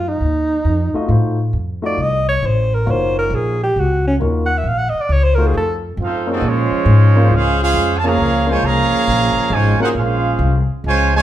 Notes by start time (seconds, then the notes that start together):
Already playing: F#2
0.08 D#4
0.21 D#2
0.65 F2
0.94 A3 D#4 F4 F#4 D#5, muted upright bass stroke
1.08 A2 A3 D#4 F4 F#4 C5
1.53 F2
1.82 A3 D#4 F4 F#4 D5 D#5
1.98 C2
2.02 D#5
2.29 C#5
2.42 A1 C5
2.74 A#4
2.86 F#1 A#3 D#4 F4 F#4 C#5
2.91 C5
3.19 A#4
3.30 A#1
3.35 G#4
3.63 G4
3.76 C#2 F#4
4.07 C#4
4.20 D#2 A#3 D#4 F4 F#4 A#4
4.46 F#5
4.58 E5
4.64 A#1
4.68 F5
4.78 F#5
4.89 D#5
4.94 muted upright bass stroke
5.01 D5
5.09 C#2 C#5
5.24 C5
5.35 A3 D#4 F4 F#4 A#4
5.39 C5
5.47 G#4
5.54 F2 A4
5.97 F#2 A3 C4 F4
6.03 D#4 A4 C5 F5
6.27 A3 A#3 C4 C#4 D#4 F4 G#4 C#5
6.32 C4 F#4 A4 D#5
6.41 A#2 F3 G#3 C#4
6.47 G#3 F4 C5 C#5
6.71 muted upright bass stroke
6.85 G#2
7.16 A#3 C#4 F4 G#4 C5
7.30 C#2 G#3 C#4 F4
7.34 C#4 G#4 C5 F5
7.59 G#3 C#4 F4 G#4 C5 F5
7.74 F2
7.97 A5
8.03 C#3 F3 A#3 C#4 F4 G#4 C#5 F5 A#5
8.18 C#2
8.47 C#3 F3 G#3 A#3 C#4 F4 G#4 C5 C#5 G#5
8.62 C2 C#3 F3 A#3 G#4 C#5 F5 A#5
8.91 muted upright bass stroke
9.07 A#1
9.36 muted upright bass stroke
9.50 G#1 C#3 F3 G#3 F4 C5 C#5 G#5
9.80 A#3 C#4 D#4 F4 F#4 G#4 A#4 C5 F#5, muted upright bass stroke
9.95 A#1 G#3 C#4 F4 G#4 C5 F5
10.39 C2
10.69 muted upright bass stroke
10.84 C#2 C#3 F3 G#3 F4 C5 C#5 G#5
11.13 C#3 F3 G#3 C#5 G#5
11.17 F4 C5